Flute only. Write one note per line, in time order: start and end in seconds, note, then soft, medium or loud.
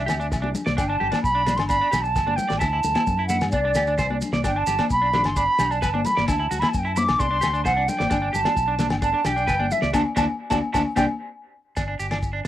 0.00 0.51 E5 medium
0.77 0.89 G5 medium
0.88 1.22 A5 loud
1.23 1.58 B5 loud
1.56 1.67 C6 medium
1.67 2.03 B5 loud
2.01 2.37 A5 loud
2.36 2.59 G5 medium
2.58 3.26 A5 loud
3.27 3.50 F#5 medium
3.51 4.17 D5 medium
4.45 4.58 G5 medium
4.57 4.90 A5 loud
4.91 5.27 B5 medium
5.26 5.38 C6 medium
5.37 5.72 B5 loud
5.71 6.07 A5 medium
6.05 6.28 B5 medium
6.29 6.61 A5 medium
6.59 6.70 B5 medium
6.69 6.80 A5 medium
6.78 6.88 G5 medium
6.86 6.99 A5 medium
6.97 7.21 D6 loud
7.19 7.64 C6 loud
7.65 7.90 F#5 medium
7.88 8.36 G5 medium
8.34 8.90 A5 loud
8.91 8.96 G5 medium
9.03 9.27 A5 loud
9.26 9.73 G5 loud
9.71 9.94 E5 medium
9.94 10.01 A5 medium
10.17 10.24 A5 medium
10.50 10.57 A5 medium
10.73 10.81 A5 medium
10.97 11.04 G5 loud